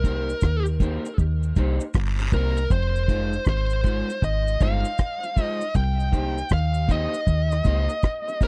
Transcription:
Already playing: fingered electric bass C2, lead electric guitar A#4
0.04 clean electric guitar A#3 D#4 G4 C5, kick, closed hi-hat, cabasa
0.30 cabasa
0.41 fingered electric bass D#2, kick, cross-stick, cabasa
0.66 cabasa
0.80 clean electric guitar A#3 D#4 G4 C5, kick, closed hi-hat, cabasa
1.05 cabasa
1.18 fingered electric bass D#2, kick, cabasa
1.43 cabasa
1.56 fingered electric bass C2, clean electric guitar A#3 D#4 G4 C5, kick, closed hi-hat, cabasa
1.80 cabasa
1.94 fingered electric bass G1, kick, cross-stick, cabasa, long guiro
2.19 muted clean electric guitar stroke, cabasa
2.32 fingered electric bass C2, clean electric guitar A#3 D#4 G4 C5, lead electric guitar A#4, kick, open hi-hat, cabasa
2.57 cabasa
2.70 fingered electric bass F1, lead electric guitar C5, kick, hi-hat pedal, cabasa
2.96 cabasa
3.08 clean electric guitar G#3 D#4 F4 C5, kick, closed hi-hat, cabasa
3.33 cabasa
3.45 fingered electric bass G#1, lead electric guitar C5, kick, cross-stick, cabasa
3.70 cabasa
3.83 clean electric guitar G#3 D#4 F4 C5, kick, closed hi-hat, cabasa
4.10 cabasa
4.22 fingered electric bass G#1, lead electric guitar D#5, kick, cabasa
4.48 cabasa
4.60 fingered electric bass G1, clean electric guitar G#3 D#4 F4 C5, lead electric guitar F5, kick, closed hi-hat, cabasa
4.85 cabasa
4.98 kick, cross-stick, cabasa
5.23 muted clean electric guitar stroke, cabasa
5.36 clean electric guitar G#3 D#4 F4 C5, kick, open hi-hat, cabasa
5.43 lead electric guitar D#5
5.61 cabasa
5.75 fingered electric bass C2, lead electric guitar G5, kick, hi-hat pedal, cabasa
6.00 cabasa
6.12 clean electric guitar A#3 D#4 G4 C5, kick, closed hi-hat, cabasa
6.38 cabasa
6.49 fingered electric bass D#2, kick, cross-stick, cabasa
6.53 lead electric guitar F5
6.74 cabasa
6.88 clean electric guitar A#3 D#4 G4 C5, lead electric guitar D#5, kick, closed hi-hat, cabasa
7.14 cabasa
7.27 fingered electric bass D#2, kick, cabasa
7.52 cross-stick, cabasa
7.64 fingered electric bass C#2, clean electric guitar A#3 D#4 G4 C5, kick, closed hi-hat, cabasa
7.89 cabasa
8.03 kick, cross-stick, cabasa
8.28 muted clean electric guitar stroke, cabasa
8.41 clean electric guitar A#3 D#4 G4 C5, lead electric guitar A#4, kick, open hi-hat, cabasa

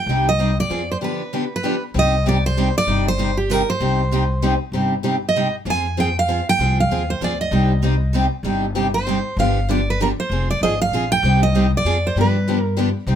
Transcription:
Already playing: steel-string acoustic guitar G5
0.06 upright bass C2, steel-string acoustic guitar C3 G3 C4 D#4 G4
0.29 steel-string acoustic guitar D#5
0.39 steel-string acoustic guitar C3 G3 C4 D#4 G4
0.60 steel-string acoustic guitar D5
0.70 upright bass F2, steel-string acoustic guitar F3 C4 F4 G#4
0.91 steel-string acoustic guitar C5
1.01 steel-string acoustic guitar D3 F3 B3 D4 G4 B4
1.33 steel-string acoustic guitar D3 F3 B3 D4 G4
1.56 steel-string acoustic guitar B4
1.63 steel-string acoustic guitar D3 F3 B3 D4 G4
1.94 upright bass C2, steel-string acoustic guitar C3 G3 C4 D#4 G4
1.99 steel-string acoustic guitar D#5
2.26 steel-string acoustic guitar C3 G3 C4 D#4 G4 D5
2.46 steel-string acoustic guitar C5
2.58 steel-string acoustic guitar C3 G3 C4 D#4 G4
2.78 steel-string acoustic guitar D5
2.87 upright bass G1, steel-string acoustic guitar C3 G3 C4 D#4 G4
3.08 steel-string acoustic guitar C5
3.19 steel-string acoustic guitar C3 G3 C4 D#4 G4
3.37 steel-string acoustic guitar G4
3.50 steel-string acoustic guitar C3 G3 C4 D#4 G4 A#4
3.70 steel-string acoustic guitar C5
3.80 upright bass C2, steel-string acoustic guitar C3 G3 C4 D#4 G4
4.12 steel-string acoustic guitar C3 G3 C4 D#4 G4
4.42 steel-string acoustic guitar C3 G3 C4 D#4 G4
4.72 upright bass G1, steel-string acoustic guitar C3 G3 C4 D#4 G4
5.03 steel-string acoustic guitar C3 G3 C4 D#4 G4
5.29 steel-string acoustic guitar D#5
5.36 steel-string acoustic guitar C3 G3 C4 D#4 G4
5.65 upright bass F2, steel-string acoustic guitar F3 C4 F4 G#4
5.70 steel-string acoustic guitar G#5
5.97 steel-string acoustic guitar F3 C4 F4 G#4 G5
6.19 steel-string acoustic guitar F5
6.28 steel-string acoustic guitar F3 C4 F4 G#4
6.49 steel-string acoustic guitar G5
6.59 upright bass C2, steel-string acoustic guitar F3 C4 F4 G#4
6.80 steel-string acoustic guitar F5
6.89 upright bass D#2, steel-string acoustic guitar F3 C4 F4 G#4
7.10 steel-string acoustic guitar C5
7.21 upright bass D2, steel-string acoustic guitar F3 C4 F4 G#4 D5
7.41 steel-string acoustic guitar D#5
7.51 upright bass C2, steel-string acoustic guitar C3 G3 C4 D#4 G4
7.83 steel-string acoustic guitar C3 G3 C4 D#4 G4
8.15 steel-string acoustic guitar C3 G3 C4 D#4 G4
8.43 upright bass G1, steel-string acoustic guitar C3 G3 C4 D#4 G4
8.75 steel-string acoustic guitar C3 G3 C4 D#4 G4
8.94 steel-string acoustic guitar C5
9.06 steel-string acoustic guitar C3 G3 C4 D#4 G4
9.37 upright bass G1, steel-string acoustic guitar D3 F3 B3 D4 G4 F5
9.69 steel-string acoustic guitar D3 F3 B3 D4 G4 D5
9.90 steel-string acoustic guitar B4
10.01 steel-string acoustic guitar D3 F3 B3 D4 G4 A#4
10.20 steel-string acoustic guitar C5
10.30 upright bass F1, steel-string acoustic guitar F3 C4 F4 G#4
10.51 steel-string acoustic guitar D5
10.61 upright bass G#1, steel-string acoustic guitar F3 C4 F4 G#4 D#5
10.82 steel-string acoustic guitar F5
10.91 upright bass A#1, steel-string acoustic guitar F3 C4 F4 G#4
11.12 steel-string acoustic guitar G5
11.23 upright bass C2, steel-string acoustic guitar C3 G3 C4 D#4 G4
11.43 steel-string acoustic guitar D#5
11.55 steel-string acoustic guitar C3 G3 C4 D#4 G4
11.77 steel-string acoustic guitar D5
11.85 upright bass F2, steel-string acoustic guitar F3 C4 F4 G#4
12.07 steel-string acoustic guitar C5
12.16 upright bass G2, steel-string acoustic guitar D3 F3 B3 D4 G4
12.21 steel-string acoustic guitar B4
12.48 steel-string acoustic guitar D3 F3 B3 D4 G4
12.60 steel-string acoustic guitar A#4
12.77 steel-string acoustic guitar D3 F3 B3 D4 G4
13.07 upright bass C2, steel-string acoustic guitar C3 G3 C4 D#4 G4

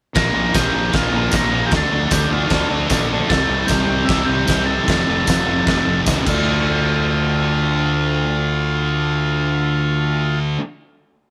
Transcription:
0.14 fingered electric bass A#1, distorted electric guitar A#2 F3 A#3, transistor combo organ A#4, kick, snare, crash
0.33 fingered electric bass A#1, distorted electric guitar A#2 F3 A#3
0.52 fingered electric bass A#1, distorted electric guitar A#2 F3 A#3, transistor combo organ G4, kick, snare, tambourine, crash
0.73 fingered electric bass A#1, distorted electric guitar A#2 F3 A#3
0.93 fingered electric bass A#1, distorted electric guitar A#2 F3 A#3, transistor combo organ F4, kick, snare, crash
1.12 fingered electric bass A#1, distorted electric guitar A#2 F3 A#3
1.32 fingered electric bass A#1, distorted electric guitar A#2 F3 A#3, transistor combo organ A#4, kick, snare, tambourine, crash
1.52 distorted electric guitar A#2 F3 A#3
1.67 transistor combo organ G4
1.71 fingered electric bass D2, distorted electric guitar D3 A3 D4, kick, snare, crash
1.76 transistor combo organ A4
1.91 fingered electric bass D2, distorted electric guitar D3 A3 D4
2.06 transistor combo organ A4
2.11 fingered electric bass D2, distorted electric guitar D3 A3 D4, transistor combo organ G4, kick, snare, tambourine, crash
2.30 fingered electric bass D2, distorted electric guitar D3 A3 D4, transistor combo organ F4
2.49 fingered electric bass D2, distorted electric guitar D3 A3 D4, kick, snare, crash
2.69 fingered electric bass D2, distorted electric guitar D3 A3 D4
2.87 fingered electric bass A#1, distorted electric guitar D3 A3 D4, kick, snare, tambourine, crash
3.09 distorted electric guitar D3 A3 D4
3.29 fingered electric bass C2, distorted electric guitar C3 G3 C4, transistor combo organ A4, kick, snare, crash
3.49 fingered electric bass C2, distorted electric guitar C3 G3 C4
3.61 transistor combo organ A4
3.67 fingered electric bass C2, distorted electric guitar C3 G3 C4, transistor combo organ G4, kick, tambourine, crash
3.71 snare
3.88 fingered electric bass C2, distorted electric guitar C3 G3 C4
4.05 distorted electric guitar C3 G3, transistor combo organ E4, crash
4.09 fingered electric bass C2, distorted electric guitar C4, kick, snare
4.25 distorted electric guitar C3, transistor combo organ G4
4.29 fingered electric bass C2, distorted electric guitar G3 C4
4.48 fingered electric bass C2, distorted electric guitar C3 G3 C4, kick, snare, tambourine, crash
4.65 distorted electric guitar C3 G3, transistor combo organ A4
4.69 distorted electric guitar C4
4.87 fingered electric bass F1, distorted electric guitar F2 C3 F3, kick, snare, crash
5.06 fingered electric bass F1, distorted electric guitar F2 C3 F3
5.26 fingered electric bass F1, distorted electric guitar F2 C3 F3, kick, snare, tambourine, crash
5.46 fingered electric bass F1, distorted electric guitar F2 C3 F3
5.66 fingered electric bass F1, distorted electric guitar F2 C3 F3, kick, snare, crash
5.86 fingered electric bass F1, distorted electric guitar F2 C3 F3
6.06 fingered electric bass C#2, distorted electric guitar F2 C3 F3, kick, snare, tambourine, crash
6.23 fingered electric bass D2, distorted electric guitar D3 A3, kick, crash, tambourine
6.28 distorted electric guitar D4, transistor combo organ F4

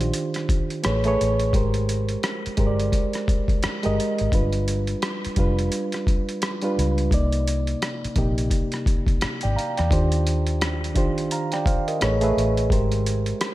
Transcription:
Already playing: fingered electric bass A#1, reed electric piano D#3 D4 F4 G4 C5
0.01 closed hi-hat
0.14 closed hi-hat
0.34 cross-stick, closed hi-hat
0.49 kick, closed hi-hat
0.70 closed hi-hat
0.83 fingered electric bass A1, reed electric piano A3 G#4 B4 C#5, cross-stick, closed hi-hat
1.04 reed electric piano A3 G#4 B4 C#5, closed hi-hat
1.21 fingered electric bass A1, closed hi-hat
1.39 closed hi-hat
1.53 fingered electric bass G#1, reed electric piano G#3 G4 A#4 C5, kick, closed hi-hat
1.74 closed hi-hat
1.89 closed hi-hat
2.09 closed hi-hat
2.23 cross-stick, closed hi-hat
2.46 muted fingered electric bass stroke, closed hi-hat
2.57 fingered electric bass G1, reed electric piano G#3 G4 A#4 C5, kick, closed hi-hat
2.67 reed electric piano D5
2.80 closed hi-hat
2.92 kick, closed hi-hat
3.13 cross-stick, closed hi-hat
3.28 kick, closed hi-hat
3.48 kick, closed hi-hat
3.63 muted fingered electric bass stroke, cross-stick, closed hi-hat
3.83 fingered electric bass G1, reed electric piano G#3 G4 A#4 D#5, closed hi-hat
4.00 closed hi-hat
4.18 fingered electric bass G#1, closed hi-hat
4.32 fingered electric bass G1, reed electric piano G3 D4 F4 B4, kick, closed hi-hat
4.53 closed hi-hat
4.68 closed hi-hat
4.87 closed hi-hat
5.02 cross-stick, closed hi-hat
5.25 muted fingered electric bass stroke, closed hi-hat
5.36 fingered electric bass F1, reed electric piano G3 D4 F4 B4, kick, closed hi-hat
5.59 closed hi-hat
5.72 closed hi-hat
5.92 cross-stick, closed hi-hat
6.07 kick, closed hi-hat
6.29 closed hi-hat
6.42 cross-stick, closed hi-hat
6.62 reed electric piano G3 D4 F4 B4, closed hi-hat
6.79 fingered electric bass C#2, closed hi-hat
6.98 closed hi-hat
7.11 fingered electric bass C2, reed electric piano C3 A#3 D#4 D5, kick, closed hi-hat
7.32 closed hi-hat
7.47 closed hi-hat
7.67 closed hi-hat
7.82 cross-stick, closed hi-hat
8.04 muted fingered electric bass stroke, closed hi-hat
8.16 fingered electric bass A#1, reed electric piano C3 A#3 D#4 G4, kick, closed hi-hat
8.38 closed hi-hat
8.51 kick, closed hi-hat
8.72 cross-stick, closed hi-hat
8.86 kick, closed hi-hat
9.07 kick, closed hi-hat
9.21 muted fingered electric bass stroke, cross-stick, closed hi-hat
9.41 fingered electric bass G#1, reed electric piano D5 G5, closed hi-hat
9.56 reed electric piano F5 A#5, closed hi-hat
9.77 fingered electric bass E2, reed electric piano D5 G5, cross-stick, closed hi-hat
9.90 fingered electric bass D#2, reed electric piano D#3 D4 F4 G4 C5, kick, closed hi-hat
10.12 closed hi-hat
10.27 closed hi-hat
10.47 closed hi-hat
10.61 cross-stick, closed hi-hat
10.84 closed hi-hat
10.94 fingered electric bass A#1, reed electric piano D#3 D4 F4 G4 C5, kick, closed hi-hat
11.18 closed hi-hat
11.31 reed electric piano F5 A#5, closed hi-hat
11.52 reed electric piano D5 G5, cross-stick, closed hi-hat
11.66 reed electric piano C5 F5, kick, closed hi-hat
11.88 reed electric piano A#4 D#5, closed hi-hat
12.01 fingered electric bass A1, reed electric piano A3 G#4 B4 C#5, cross-stick, closed hi-hat
12.21 reed electric piano A3 G#4 B4 E5, closed hi-hat
12.37 fingered electric bass A1, closed hi-hat
12.57 closed hi-hat
12.70 fingered electric bass G#1, reed electric piano G#3 G4 A#4 C5, kick, closed hi-hat
12.92 closed hi-hat
13.06 closed hi-hat
13.26 closed hi-hat
13.41 cross-stick, closed hi-hat

